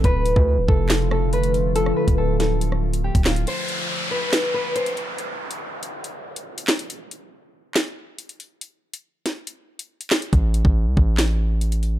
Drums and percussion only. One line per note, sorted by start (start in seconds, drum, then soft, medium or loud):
0.04 kick loud
0.04 closed hi-hat medium
0.26 closed hi-hat medium
0.36 kick loud
0.68 kick loud
0.89 snare loud
0.89 clap medium
0.89 closed hi-hat medium
1.11 cross-stick loud
1.33 closed hi-hat medium
1.43 closed hi-hat medium
1.54 closed hi-hat medium
1.76 closed hi-hat medium
1.86 cross-stick medium
2.08 kick loud
2.08 closed hi-hat medium
2.40 snare medium
2.40 closed hi-hat medium
2.61 closed hi-hat medium
2.72 cross-stick medium
2.94 closed hi-hat medium
3.15 kick loud
3.15 closed hi-hat medium
3.25 cross-stick loud
3.25 snare loud
3.25 clap loud
3.36 closed hi-hat medium
3.47 closed hi-hat medium
3.69 closed hi-hat medium
4.32 snare loud
4.32 clap medium
4.32 closed hi-hat medium
4.76 closed hi-hat medium
4.86 closed hi-hat medium
4.97 closed hi-hat medium
5.18 closed hi-hat medium
5.51 closed hi-hat medium
5.83 closed hi-hat medium
6.04 closed hi-hat medium
6.36 closed hi-hat medium
6.58 closed hi-hat medium
6.68 snare loud
6.68 clap loud
6.79 closed hi-hat medium
6.90 closed hi-hat medium
7.11 closed hi-hat medium
7.75 snare loud
7.75 clap medium
7.75 closed hi-hat medium
8.18 closed hi-hat medium
8.29 closed hi-hat medium
8.40 closed hi-hat medium
8.61 closed hi-hat medium
8.93 closed hi-hat medium
9.26 snare medium
9.26 closed hi-hat medium
9.47 closed hi-hat medium
9.79 closed hi-hat medium
10.01 closed hi-hat medium
10.11 snare loud
10.11 clap loud
10.22 closed hi-hat medium
10.33 kick loud
10.33 closed hi-hat medium
10.54 closed hi-hat medium
10.65 kick loud
10.97 kick medium
11.18 snare loud
11.18 clap medium
11.18 closed hi-hat medium
11.61 closed hi-hat medium
11.72 closed hi-hat medium
11.83 closed hi-hat medium